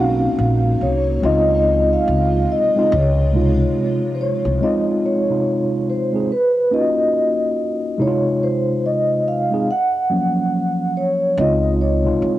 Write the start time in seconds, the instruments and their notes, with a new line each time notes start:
Already playing: upright bass B1, tine electric piano A#3 C#4 D#4
0.00 tine electric piano F#4, vibraphone F5
0.39 upright bass A#1
0.81 upright bass C2, vibraphone C#5
1.23 upright bass C#2, ambient pad C3 G#3 F4, tine electric piano G#3 C4 D#4 F4, vibraphone D#5
1.93 vibraphone F5
2.08 upright bass C#2
2.52 vibraphone D#5
2.76 tine electric piano G#3 C4 D#4 F4
2.92 upright bass C#2, vibraphone C#5
3.34 tine electric piano C3 G#3 D#4 F4
4.15 vibraphone C5
4.21 vibraphone C#5
4.45 upright bass C2
4.61 tine electric piano G#3 C4 D#4 F4, vibraphone D#5
5.06 vibraphone C#5
5.29 tine electric piano C3 G#3 D#4 F4
5.89 vibraphone C5
6.13 tine electric piano G#3 C4 D#4 G#4
6.32 vibraphone B4
6.71 tine electric piano A#3 C#4 D#4 F4, vibraphone D#5
6.81 tine electric piano F#4
7.98 tine electric piano C3 G#3 D#4 E4, vibraphone C#5
8.07 tine electric piano F4
8.43 vibraphone C5
8.86 vibraphone D#5
9.28 vibraphone F5
9.51 tine electric piano G#3 C4 D#4 G#4
9.71 vibraphone F#5
10.10 tine electric piano F3 F#3 A#3 C#4
10.97 vibraphone C#5
11.38 upright bass C#2, tine electric piano G#3 C4 D#4 F4, vibraphone D#5
11.82 vibraphone C#5
12.04 tine electric piano C3 G#3 D#4 F4
12.22 upright bass C2